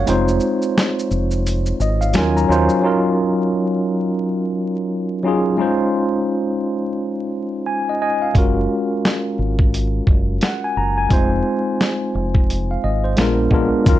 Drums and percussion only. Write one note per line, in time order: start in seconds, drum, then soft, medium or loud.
0.07 closed hi-hat medium
0.07 shaker medium
0.28 shaker soft
0.40 shaker soft
0.62 shaker soft
0.78 snare loud
0.78 closed hi-hat medium
0.78 shaker medium
0.99 shaker soft
1.11 shaker soft
1.31 shaker soft
1.47 closed hi-hat medium
1.47 shaker medium
1.66 shaker medium
1.81 shaker soft
2.02 shaker medium
2.14 snare loud
2.14 closed hi-hat medium
2.14 shaker medium
2.37 shaker soft
2.52 shaker soft
2.69 shaker soft
8.35 kick loud
8.35 closed hi-hat medium
9.05 snare loud
9.05 closed hi-hat medium
9.59 kick medium
9.74 closed hi-hat medium
10.07 kick medium
10.41 snare loud
10.41 closed hi-hat medium
11.10 kick loud
11.10 closed hi-hat medium
11.81 snare loud
11.81 closed hi-hat medium
12.35 kick medium
12.50 closed hi-hat medium
13.17 snare loud
13.17 closed hi-hat medium
13.51 kick medium
13.86 kick loud
13.86 closed hi-hat medium
13.86 shaker medium